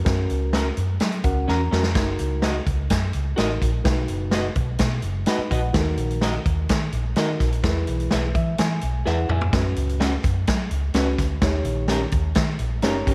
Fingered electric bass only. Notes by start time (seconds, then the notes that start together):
0.06 F#2
0.30 C#2
0.77 F#2
1.01 F#3
1.24 C#2
1.48 E2
1.72 F2
1.95 F#1
2.20 C#2
2.66 C#2
2.90 F#2
3.15 C#2
3.38 A1
3.62 A#1
3.85 B1
4.09 F#1
4.56 B1
4.80 B2
5.03 F#1
5.38 muted fingered electric bass stroke
5.50 A#1
5.74 D#2
5.97 A#1
6.46 D#2
6.69 D#3
6.93 A#1
7.17 D#3
7.40 A#1
7.64 E2
7.88 B1
8.13 B1
8.35 E3
8.59 E3
8.83 B1
9.06 E2
9.29 F2
9.53 F#2
9.77 C#2
10.24 F#2
10.48 F#3
10.71 C#2
10.94 C#2
11.18 D2
11.42 D#2
11.64 A#1
12.12 D#2
12.36 D#3
12.60 A#1
12.83 F#1
13.07 G1